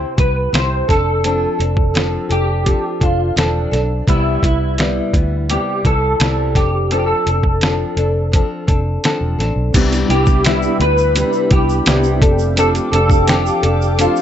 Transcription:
Already playing: nylon-string guitar C3 E4 G4, clean electric guitar C5
0.17 fingered electric bass C2, nylon-string guitar B3 E4 G4, clean electric guitar B4, kick, closed hi-hat
0.53 fingered electric bass C2, nylon-string guitar C3 E4 G4, clean electric guitar C5, snare, closed hi-hat
0.88 fingered electric bass F1, nylon-string guitar C4 D4 A4, clean electric guitar A4, kick, snare, closed hi-hat
1.24 nylon-string guitar F3 C4 D4 A4, closed hi-hat
1.59 fingered electric bass F1, nylon-string guitar C4 D4 A4, closed hi-hat
1.77 kick
1.94 nylon-string guitar F3 C4 D4 A4, snare, closed hi-hat
2.29 fingered electric bass F1, nylon-string guitar C4 D4 A4, clean electric guitar G4, closed hi-hat
2.64 nylon-string guitar F3 C4 D4 A4, kick, closed hi-hat
3.00 fingered electric bass F1, nylon-string guitar C4 D4 A4, clean electric guitar F4, kick, closed hi-hat
3.36 fingered electric bass E1, nylon-string guitar F3 C4 D4 A4, clean electric guitar D4, snare, closed hi-hat
3.71 fingered electric bass B1, nylon-string guitar C4 D4 A4, snare, closed hi-hat
4.07 fingered electric bass C2, nylon-string guitar C3 G3 B3 E4, clean electric guitar E4, kick, closed hi-hat
4.42 fingered electric bass C2, nylon-string guitar G3 B3 E4, clean electric guitar E4, kick, closed hi-hat
4.78 nylon-string guitar C3 G3 B3 E4, snare, closed hi-hat
5.13 fingered electric bass D2, nylon-string guitar G3 B3 E4, kick, closed hi-hat
5.49 nylon-string guitar C3 G3 B3 E4, clean electric guitar G4, closed hi-hat
5.84 fingered electric bass C2, nylon-string guitar G3 B3 E4, clean electric guitar A4, kick, closed hi-hat
6.20 fingered electric bass C2, nylon-string guitar C3 G3 B3 E4, snare, closed hi-hat
6.55 fingered electric bass F1, nylon-string guitar C4 D4 A4, clean electric guitar G4, kick, snare, closed hi-hat
6.91 nylon-string guitar F3 C4 D4 A4, clean electric guitar A4, closed hi-hat
6.99 clean electric guitar G4
7.06 clean electric guitar A4
7.26 fingered electric bass F1, nylon-string guitar C4 D4 A4, closed hi-hat
7.43 kick
7.61 nylon-string guitar F3 C4 D4 A4, snare, closed hi-hat
7.97 fingered electric bass F1, nylon-string guitar C4 D4 A4, closed hi-hat
8.32 nylon-string guitar F3 C4 D4 A4, kick, closed hi-hat
8.67 fingered electric bass F1, nylon-string guitar C4 D4 A4, kick, closed hi-hat
9.04 nylon-string guitar F3 C4 D4 A4, snare, closed hi-hat
9.21 fingered electric bass E1
9.38 fingered electric bass A1, nylon-string guitar C4 D4 A4, snare, closed hi-hat
9.56 fingered electric bass B1
9.73 fingered electric bass C2, nylon-string guitar C3 G3 B3 E4, tonewheel organ B3 D4 D#4 G4, analog synth pad G4 E5 G5 B5, kick, closed hi-hat, crash, shaker
9.81 tonewheel organ E4
9.92 closed hi-hat, shaker
10.09 fingered electric bass C2, nylon-string guitar G3 B3 E4, clean electric guitar G4, closed hi-hat
10.26 kick, shaker
10.44 nylon-string guitar C3 G3 B3 E4, clean electric guitar E4, snare, closed hi-hat, shaker
10.62 shaker
10.80 fingered electric bass D2, nylon-string guitar G3 B3 E4, clean electric guitar B4, closed hi-hat
10.98 shaker
11.15 nylon-string guitar C3 G3 B3 E4, tonewheel organ B3 D4 E4 G4, closed hi-hat, shaker
11.33 shaker
11.50 fingered electric bass C2, nylon-string guitar G3 B3 E4, clean electric guitar G4, kick, closed hi-hat
11.69 shaker
11.86 fingered electric bass C2, nylon-string guitar C3 G3 B3 E4, snare, closed hi-hat, shaker
12.04 shaker
12.21 fingered electric bass F1, tonewheel organ A3 C4 D4 G4, nylon-string guitar C4 D4 A4, analog synth pad A4 F5 D6, kick, closed hi-hat
12.39 shaker
12.56 nylon-string guitar F3 C4 D4 A4, clean electric guitar A4, closed hi-hat, shaker
12.75 closed hi-hat, shaker
12.91 fingered electric bass F1, nylon-string guitar C4 D4 A4, clean electric guitar A4, closed hi-hat
13.10 kick, shaker
13.27 nylon-string guitar F3 C4 D4 A4, clean electric guitar G4, snare, closed hi-hat, shaker
13.46 shaker
13.62 fingered electric bass F1, nylon-string guitar C4 D4 A4, closed hi-hat
13.82 shaker
13.97 nylon-string guitar F3 C4 D4 A4, tonewheel organ A3 C4 D4 G4, clean electric guitar F4, closed hi-hat, shaker
14.16 shaker

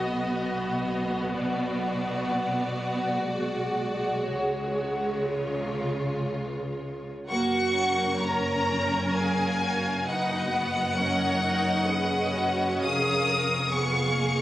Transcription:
Already playing: double bass section B1, cello section B2, viola section B3, violin section F#4 D#5
1.30 violin section F#4 D5
3.21 viola section G#3
4.24 double bass section C#2, cello section C#3, violin section C#5
5.30 violin section F4
7.29 double bass section F#1, cello section F#2, viola section A#3 F#4, violin section A#4 F#5 C#6
7.75 viola section C#4
8.20 viola section A#4, violin section C#5 A#5
9.15 violin section G#4 F5 G#5
9.60 violin section F#4
10.06 double bass section F#1, cello section F#2, viola section D#4 B4, violin section F#4 D#5 F#5
10.52 viola section B3
10.96 viola section C#4 A#4, violin section C#5 D#5
11.41 viola section D#4
11.87 viola section C#4 G#4, violin section B4
12.35 viola section F#4
12.82 double bass section F1, cello section F2, viola section G#4, violin section A#4 F5 D#6
13.29 viola section A#4
13.71 viola section B3 G#4, violin section G#4 F5 C#6
14.16 viola section A#3

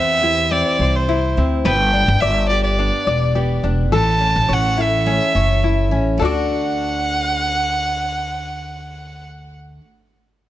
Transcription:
Already playing: upright bass E2, steel-string acoustic guitar E3 C4 E4, ukulele C4 G4 C5, violin E5
0.22 ukulele E4, steel-string acoustic guitar G4
0.50 steel-string acoustic guitar C4, ukulele C4, violin D5
0.79 upright bass C2, steel-string acoustic guitar E4, ukulele C5
0.96 violin C5
1.09 steel-string acoustic guitar C4, ukulele E4
1.37 upright bass D2, ukulele C4, steel-string acoustic guitar E4
1.65 upright bass G1, steel-string acoustic guitar B3, ukulele B4, violin G5
1.93 steel-string acoustic guitar B3, ukulele D4
2.08 upright bass G1
2.21 upright bass G1, steel-string acoustic guitar D4, ukulele D5, violin E5
2.49 ukulele G4, steel-string acoustic guitar G4, violin D5
2.64 violin D5
2.79 steel-string acoustic guitar B3, ukulele D4
3.07 upright bass E1, steel-string acoustic guitar D4, ukulele D5
3.35 steel-string acoustic guitar B3, ukulele G4
3.63 upright bass E1, ukulele D4, steel-string acoustic guitar D4
3.92 upright bass A1, steel-string acoustic guitar E3, ukulele A4, violin A5
4.20 steel-string acoustic guitar A3, ukulele C#4
4.36 upright bass A1
4.49 upright bass A1, steel-string acoustic guitar C#4, ukulele C#5
4.54 violin F#5
4.77 ukulele E4, steel-string acoustic guitar A4
4.82 violin E5
5.06 steel-string acoustic guitar A3, ukulele C#4
5.35 upright bass F#1, steel-string acoustic guitar C#4, ukulele C#5
5.62 steel-string acoustic guitar A3, ukulele E4
5.91 upright bass A1, steel-string acoustic guitar C#4, ukulele C#4
6.18 upright bass D2, steel-string acoustic guitar A3 D4, ukulele A4
6.22 ukulele D4 F#4 D5, steel-string acoustic guitar F#4, violin F#5

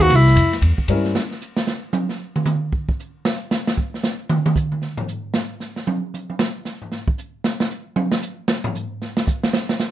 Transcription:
Already playing: upright piano F3 A#3 D#4 G#4 B4
0.01 tenor saxophone F#4, ride
0.10 upright bass C2, ride
0.15 tenor saxophone E4
0.26 snare
0.36 upright bass F2, hi-hat pedal, ride
0.53 snare, ride
0.62 upright bass E2, ride
0.78 muted upright bass stroke, kick
0.88 upright bass G2, upright piano G3 C4 C#4 E4 A#4, hi-hat pedal, ride
1.04 snare
1.15 snare
1.31 snare
1.41 hi-hat pedal
1.56 snare
1.67 snare
1.93 hi-hat pedal, high tom
2.09 snare
2.36 mid tom
2.46 hi-hat pedal, mid tom
2.73 kick
2.89 kick
3.00 hi-hat pedal
3.25 snare
3.51 snare, hi-hat pedal
3.67 snare
3.78 kick
3.94 snare
4.03 snare, hi-hat pedal
4.29 mid tom
4.46 mid tom
4.56 kick, hi-hat pedal
4.72 mid tom
4.82 snare
4.97 floor tom
5.08 hi-hat pedal
5.34 snare
5.60 snare, hi-hat pedal
5.76 snare
5.87 high tom
6.14 hi-hat pedal, high tom
6.30 high tom
6.39 snare
6.65 snare, hi-hat pedal
6.82 floor tom
6.92 snare
7.08 kick
7.18 hi-hat pedal
7.44 snare
7.60 snare
7.71 hi-hat pedal
7.96 high tom
8.12 snare
8.22 hi-hat pedal
8.48 snare
8.64 floor tom
8.75 hi-hat pedal
9.02 snare
9.17 snare
9.27 kick, hi-hat pedal
9.43 snare
9.53 snare
9.69 snare
9.80 snare, hi-hat pedal

